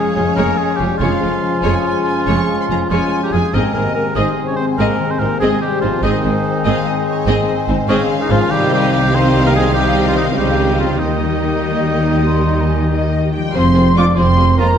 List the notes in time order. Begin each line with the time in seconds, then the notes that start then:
Already playing: C#3 F3 G#3 C#4 F4 G#4 C#5 G#5
0.15 F1 F2 G#3 C#4 F4 G#4
0.36 F1 F2 G#3 A#3 G#4 A#4 C#5
0.58 G#3 G#4 C#5
0.76 F1 F2 G#3 F4 G4 G#4
0.81 G3
0.98 F1 F2 C#3 F3 G#3 C#4 F4 G#4 C#5 F5 G#5
1.20 F1 F2 G#3 C#4 F4
1.42 C#4
1.62 F1 F2 G#3 G#4 C#5 G#5
1.84 C#5 G#5
2.05 G#4 G#5
2.26 F1 F2 F3 G#3 G#4 C#5 C#6
2.48 G#3
2.61 C6
2.69 F1 F2 G#3 C#4 F4 G#4 A#5
2.90 F1 F2 C#3 F3 G#3 C#4 F4 G#4 C#5 G#5
3.11 C#5
3.23 G3 G4 A#5
3.32 F1 F2 G#3 F4 G#4 G#5
3.52 G#1 G#2 C3 G#3 C4 G#4 A#4 D#5 G#5
3.57 A#3
3.74 G#1 G#2 D#3 A#3 C4 G#4 A#4
3.95 G#3 A#3 A#4
4.16 G#1 G#2 C3 G#3 C4 D#4 G#4 C5 D#5 G#5
4.38 G#4
4.47 C#4 C#5
4.56 C4 C5
4.78 G#1 G#2 A#3 C4 G#4 A#4 D#5
5.00 D#3
5.10 C4 C5
5.19 G#1 G#2 G#3 A#3 C4 D#4 A#4 C5
5.40 G#1 G#2 C3 G#3 C4 G#4 C5 D#5 G#5
5.61 G3 G4 G#4
5.81 G#1 G#2 F3 C4 D#4 F4 C5
6.02 G#1 G#2 D#3 G#3 C4 D#4 G#4 D#5 G#5
6.24 G#1 G#2 D#3 C4 G#4
6.45 G#3
6.65 G#1 G#2 C4 G#4 C5 D#5 F5
6.86 G#4 D#5
7.07 C5 C#5
7.26 G#1 G#2 C4 G#4 C5 D#5
7.48 D#3
7.68 G#1 G#2 G#3 C4 D#4 C5
7.87 G#1 G#2 C#3 C4 C#4 G#4 C5 D#5 F5
8.09 C#4 G#4
8.20 D#3 D#4
8.30 G#1 G#2 F3 C4 D#4 F4 C5
8.50 C2 C3 D#3 G3 C4 D#4 G4 D#5 G5
8.54 G3
8.71 G3 C4 G4
8.90 G3 G4
9.12 D#3 G3 C4 D#4 G4 C5 D#5 G5
9.33 G4
9.45 A#3 A#4
9.53 G#3 G#4 C5
9.74 D#3 G3 C4 D#4 G4 D#5 G5
10.04 F3 F4
10.14 D#3 G3 D#4
10.35 C#2 C#3 D#3 G3 C4 G4 C5 G5
10.39 D#4 D#5
10.79 F3 F4 C5
10.99 D#2 D#3 G3 A#3 D#4 G4 D#5 G5
11.03 D#5
11.21 G3
11.43 D#4
11.64 G4 G5
11.85 D#5 G5
12.06 G5
12.26 D#3 C6
12.48 G3
12.61 A#5
12.68 D#4 G#5
12.91 D#3 D#4 G4 D#5
13.13 D#5
13.33 F3 G3 G4 G5
13.41 G#3
13.46 C4
13.50 F4 C6
13.55 F1 F2 F3 C4 F4 G#4 C5 C6
13.74 F3 C4 F4 G#4
13.95 F3 G#3 C4 D4 F4 G#4 D5 D6
14.15 F1 F2 F3 C4 F4 G#4 C5 C6
14.35 F4 G#4
14.40 F3 C4
14.57 F3 G#3 A#3 C4 F4 G#4 A#4 A#5